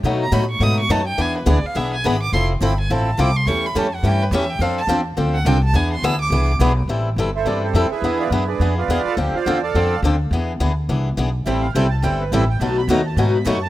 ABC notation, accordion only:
X:1
M:4/4
L:1/8
Q:"Swing" 1/4=210
K:Am
V:1 name="Accordion"
z8 | z8 | z8 | z8 |
z8 | z8 | z3 [EAce] [Dd] [CGAc]2 [E^GBe]- | [E^GBe] [FBdf] [EGBe] [DGBd]2 [FBdf]2 [Aa] |
[Gg] [Fcdf]2 [Adfa]3 z2 | z8 | e f g a g B e g | a b _b a ^g =b ^c' a |]